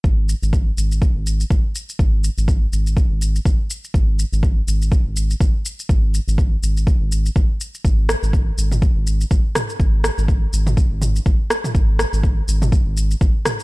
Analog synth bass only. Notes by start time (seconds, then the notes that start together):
0.04 G#1
0.42 G#1
0.77 G#1
1.16 G#1
1.50 G#1
1.99 G#1
2.38 G#1
2.72 G#1
3.10 G#1
3.45 G#1
3.94 G#1
4.32 G#1
4.67 G#1
5.06 G#1
5.40 G#1
5.89 G#1
6.28 G#1
6.63 G#1
7.01 G#1
7.36 G#1
7.85 G#1
8.23 G#1
8.58 G#1
8.96 G#1
9.31 G#1
9.80 G#1
10.18 G#1
10.53 G#1
10.91 G#1
11.26 G#1
11.75 G#1
12.13 G#1
12.48 G#1
12.86 G#1
13.21 G#1